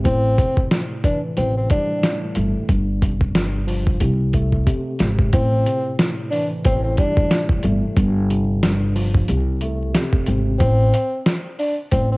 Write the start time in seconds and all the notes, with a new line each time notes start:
0.04 A1 A2 C4, kick, closed hi-hat
0.38 C3, kick, closed hi-hat
0.57 kick
0.71 A2, snare, closed hi-hat
1.04 E3 D4, kick, closed hi-hat
1.37 A1 A2 C4, closed hi-hat
1.57 C4
1.70 G3 D4, kick, closed hi-hat
2.03 A2, snare, closed hi-hat
2.35 G1 A3, closed hi-hat
2.69 G1 G2, kick, closed hi-hat
3.02 C3, kick, closed hi-hat
3.21 kick
3.35 G2, snare, closed hi-hat
3.67 F3, open hi-hat
3.87 kick
4.00 C2 C3, kick, closed hi-hat
4.33 A3, kick, closed hi-hat
4.53 kick
4.66 C3, kick, closed hi-hat
4.99 G#1 C4, snare, closed hi-hat
5.19 kick
5.32 A1 A2 C4, kick, closed hi-hat
5.66 C3, closed hi-hat
5.99 A2, snare, closed hi-hat
6.30 E3 D4, open hi-hat
6.64 A1 A2 C4, kick, closed hi-hat
6.83 C4
6.97 G3 D4, kick, closed hi-hat
7.17 kick
7.31 A2, snare, closed hi-hat
7.49 kick
7.63 G1 A3, closed hi-hat
7.96 G1 G2, kick, closed hi-hat
8.30 C3, closed hi-hat
8.63 G2, snare, closed hi-hat
8.95 F3, open hi-hat
9.14 kick
9.28 C2 C3, closed hi-hat
9.61 A3, closed hi-hat
9.94 C3, snare, closed hi-hat
10.13 kick
10.26 G#1 C4, closed hi-hat
10.60 A1 C4, kick, closed hi-hat
10.94 closed hi-hat
11.26 snare, closed hi-hat
11.59 D4, open hi-hat
11.92 A1 C4, kick, closed hi-hat
12.12 C4